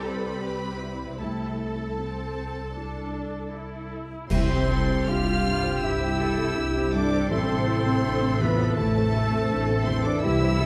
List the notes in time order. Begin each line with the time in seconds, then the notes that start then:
Already playing: C2 C3 G3 C4 E4 G4 A4
0.05 B4 B5
0.43 G4
0.81 E4
1.03 C3
1.08 C4
1.16 C2 E4 A4
1.20 C2 A3 A4 A5
1.99 C4
2.77 D4 E4 A4
3.53 E4
4.30 C2 C3 C4 E4 G4 C5 G5 C6, concert bass drum, crash
4.48 G3 C4 G4 C5
4.69 C4 E4 A4
4.88 C4 G4
5.07 C2 D4 E4 F4 G4 F5 F6
5.27 C4 G4
5.46 G2 E4 F4
5.64 C4 G4 C5 G5
5.82 C2 G2 E4 G4 E5 E6
6.01 C4 G4 C5 G5
6.20 E4 A4 E5
6.38 C4 G4
6.56 C2 D4 E4 G4
6.76 C4 G4
6.93 G2 G3 D4 E4 A4 D5 D6
7.11 C4 G4 C5
7.30 A1 A2 A3 C4 E4 A4 C5 E5 C6
7.47 C3 C4 A4 C5
7.67 A3 C4 E4
7.86 C4 A4
8.04 A1 A3 D4 E4 A4
8.22 C4 A4
8.40 E2 A3 B3 E4 F4 B4 E5 B5
8.58 C4 A4 C5 A5
8.76 A1 E2 A3 E4 A4 E5 A5
8.95 C4 A4 C5 A5
9.12 A3 E4 A4 E5
9.31 C4 A4 C5
9.49 A1 A3 D4 E4 A4
9.68 C4 A4
9.84 E2 E3 C4 E4 C5 C6
9.88 A3
10.05 C4 D4 A4 C5 D5 D6
10.21 C2 C3 E4 G4 E5 E6
10.25 C2
10.42 G3 C4 G4 C5
10.60 C4 E4 A4